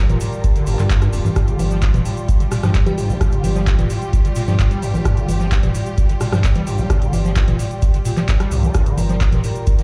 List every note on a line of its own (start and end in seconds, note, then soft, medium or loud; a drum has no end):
0.00 9.83 G3 medium
0.00 9.83 F4 medium
0.00 9.83 G4 medium
0.00 1.35 A#4 loud
0.00 9.83 D5 medium
0.00 2.14 A5 medium
0.09 0.18 D1 medium
0.09 0.19 A#2 loud
0.09 closed hi-hat soft
0.09 low conga medium
0.09 cabasa soft
0.20 0.27 A2 medium
0.20 open hi-hat loud
0.20 cabasa medium
0.33 closed hi-hat soft
0.33 cabasa soft
0.44 kick loud
0.44 closed hi-hat medium
0.44 cabasa medium
0.56 0.68 D3 medium
0.56 closed hi-hat medium
0.56 cabasa soft
0.67 0.76 G1 medium
0.67 0.77 G2 medium
0.67 open hi-hat loud
0.67 cabasa loud
0.79 1.09 G2 medium
0.79 0.82 D3 medium
0.79 clap soft
0.79 cabasa soft
0.90 0.94 G2 medium
0.90 kick loud
0.90 clap loud
0.90 closed hi-hat medium
0.90 cabasa medium
1.02 1.08 G2 loud
1.02 cross-stick medium
1.02 closed hi-hat medium
1.02 cabasa soft
1.13 1.22 D1 medium
1.13 1.20 F2 medium
1.13 open hi-hat loud
1.13 cabasa medium
1.25 1.29 G2 medium
1.25 low conga medium
1.25 cabasa soft
1.36 1.54 G1 loud
1.36 1.49 G2 medium
1.36 8.73 G4 loud
1.36 kick loud
1.36 cross-stick medium
1.36 closed hi-hat medium
1.36 cabasa medium
1.47 1.61 D3 medium
1.47 closed hi-hat medium
1.47 cabasa soft
1.59 1.90 G1 medium
1.59 1.63 G2 medium
1.59 open hi-hat loud
1.59 low conga loud
1.59 cabasa medium
1.71 1.77 F3 loud
1.71 closed hi-hat soft
1.71 cabasa soft
1.82 kick loud
1.82 clap loud
1.82 closed hi-hat medium
1.82 cabasa soft
1.94 2.03 D1 medium
1.94 2.03 A#2 loud
1.94 closed hi-hat medium
1.94 low conga loud
1.94 cabasa soft
2.05 2.12 A2 medium
2.05 open hi-hat loud
2.05 cabasa medium
2.12 9.52 G5 medium
2.17 closed hi-hat soft
2.17 cabasa soft
2.28 kick loud
2.28 closed hi-hat medium
2.28 cabasa medium
2.40 2.44 D3 medium
2.40 closed hi-hat medium
2.40 cabasa soft
2.52 2.58 A#2 loud
2.52 cross-stick medium
2.52 open hi-hat loud
2.52 cabasa medium
2.63 2.81 G2 loud
2.63 2.69 F3 loud
2.63 cross-stick medium
2.63 cabasa soft
2.74 2.78 F2 medium
2.74 kick loud
2.74 clap loud
2.74 closed hi-hat medium
2.74 cabasa soft
2.86 2.95 G1 medium
2.86 2.99 G3 medium
2.86 2.94 G4 medium
2.86 closed hi-hat medium
2.86 low conga loud
2.86 cabasa soft
2.98 3.11 G2 loud
2.98 3.05 G4 medium
2.98 open hi-hat loud
2.98 cabasa medium
3.09 3.18 A#1 medium
3.09 3.19 G3 medium
3.09 cabasa soft
3.21 3.39 G1 loud
3.21 3.34 G2 medium
3.21 kick loud
3.21 cross-stick medium
3.21 closed hi-hat medium
3.21 cabasa soft
3.32 3.45 D3 medium
3.32 closed hi-hat medium
3.32 cabasa soft
3.44 3.74 G1 medium
3.44 3.48 G2 medium
3.44 open hi-hat loud
3.44 low conga loud
3.44 cabasa medium
3.56 3.62 F3 loud
3.56 cabasa soft
3.67 kick loud
3.67 clap loud
3.67 closed hi-hat medium
3.67 cabasa soft
3.79 3.88 D1 medium
3.79 3.88 A#2 loud
3.79 closed hi-hat medium
3.79 low conga loud
3.79 cabasa soft
3.90 3.96 A2 medium
3.90 open hi-hat loud
3.90 cabasa medium
4.02 cabasa soft
4.13 kick loud
4.13 closed hi-hat medium
4.13 cabasa medium
4.25 4.29 D3 medium
4.25 closed hi-hat medium
4.25 cabasa soft
4.35 4.43 A#2 loud
4.35 open hi-hat loud
4.35 cabasa medium
4.47 4.66 G2 loud
4.47 4.54 F3 loud
4.47 cabasa soft
4.59 4.63 F2 medium
4.59 kick loud
4.59 clap loud
4.59 closed hi-hat medium
4.59 cabasa soft
4.71 4.80 G1 medium
4.71 4.84 G3 medium
4.71 closed hi-hat medium
4.71 cabasa soft
4.82 4.96 G2 loud
4.82 open hi-hat loud
4.82 cabasa medium
4.94 5.03 A#1 medium
4.94 5.03 G3 medium
4.94 low conga medium
4.94 cabasa soft
5.05 5.23 G1 loud
5.05 5.19 G2 medium
5.05 kick loud
5.05 cross-stick medium
5.05 closed hi-hat medium
5.05 cabasa soft
5.17 5.30 D3 medium
5.17 closed hi-hat medium
5.17 cabasa soft
5.28 5.59 G1 medium
5.28 5.32 G2 medium
5.28 open hi-hat loud
5.28 low conga loud
5.28 cabasa medium
5.40 5.46 F3 loud
5.40 closed hi-hat soft
5.40 cabasa soft
5.51 kick loud
5.51 clap loud
5.51 closed hi-hat medium
5.51 cabasa soft
5.63 5.72 D1 medium
5.63 5.73 A#2 medium
5.63 closed hi-hat medium
5.63 low conga loud
5.63 cabasa soft
5.75 5.81 A2 medium
5.75 open hi-hat loud
5.75 cabasa medium
5.86 closed hi-hat soft
5.86 cabasa soft
5.98 kick loud
5.98 closed hi-hat medium
5.98 cabasa soft
6.09 6.13 D3 medium
6.09 closed hi-hat medium
6.09 cabasa soft
6.21 6.27 A#2 loud
6.21 cross-stick medium
6.21 open hi-hat loud
6.21 cabasa medium
6.32 6.50 G2 loud
6.32 6.39 F3 loud
6.32 cross-stick medium
6.32 cabasa soft
6.44 6.48 F2 loud
6.44 kick loud
6.44 clap loud
6.44 closed hi-hat medium
6.44 cabasa medium
6.54 6.64 G1 medium
6.54 6.68 G3 medium
6.54 closed hi-hat medium
6.54 low conga loud
6.54 cabasa soft
6.67 6.80 G2 loud
6.67 open hi-hat loud
6.67 cabasa medium
6.78 6.87 A#1 medium
6.78 6.88 G3 medium
6.78 cabasa soft
6.90 7.08 G1 loud
6.90 7.03 G2 medium
6.90 kick loud
6.90 cross-stick medium
6.90 closed hi-hat medium
6.90 cabasa soft
7.02 7.14 D3 medium
7.02 closed hi-hat medium
7.02 cabasa soft
7.13 7.44 G1 medium
7.13 7.17 G2 medium
7.13 open hi-hat loud
7.13 low conga medium
7.13 cabasa medium
7.25 7.31 F3 loud
7.25 closed hi-hat soft
7.25 cabasa soft
7.36 kick loud
7.36 clap loud
7.36 closed hi-hat medium
7.36 cabasa soft
7.48 7.57 D1 medium
7.48 7.57 A#2 loud
7.48 closed hi-hat medium
7.48 low conga medium
7.48 cabasa soft
7.59 7.66 A2 medium
7.59 open hi-hat loud
7.59 cabasa medium
7.71 closed hi-hat soft
7.71 cabasa soft
7.82 kick loud
7.82 closed hi-hat medium
7.82 cabasa soft
7.94 7.98 D3 medium
7.94 closed hi-hat medium
7.94 cabasa soft
8.05 8.12 A#2 loud
8.05 open hi-hat loud
8.05 cabasa medium
8.17 8.23 F3 loud
8.17 clap soft
8.17 closed hi-hat soft
8.17 low conga medium
8.17 cabasa soft
8.28 8.32 F2 medium
8.28 kick loud
8.28 clap loud
8.28 closed hi-hat medium
8.28 cabasa soft
8.40 8.53 G3 medium
8.40 cross-stick medium
8.40 closed hi-hat medium
8.40 cabasa soft
8.51 8.70 C2 medium
8.51 8.65 G2 loud
8.51 open hi-hat loud
8.51 cabasa medium
8.63 8.73 G3 medium
8.63 closed hi-hat soft
8.63 low conga medium
8.63 cabasa soft
8.74 8.93 G1 medium
8.74 8.88 G2 medium
8.74 9.83 A#4 loud
8.74 kick loud
8.74 cross-stick medium
8.74 closed hi-hat medium
8.74 cabasa medium
8.86 8.99 D3 medium
8.86 closed hi-hat medium
8.86 cabasa soft
8.98 9.28 G1 medium
8.98 9.02 G2 medium
8.98 open hi-hat loud
8.98 low conga medium
8.98 cabasa medium
9.09 9.16 F3 loud
9.09 closed hi-hat soft
9.09 cabasa soft
9.21 kick loud
9.21 clap loud
9.21 closed hi-hat medium
9.21 cabasa medium
9.32 9.41 D1 medium
9.32 9.42 A#2 loud
9.32 closed hi-hat medium
9.32 low conga medium
9.32 cabasa soft
9.44 9.50 A2 medium
9.44 open hi-hat loud
9.44 cabasa loud
9.50 9.83 A5 medium
9.55 closed hi-hat soft
9.55 cabasa soft
9.67 kick loud
9.67 closed hi-hat medium
9.67 cabasa medium
9.79 9.82 D3 medium
9.79 closed hi-hat medium
9.79 cabasa soft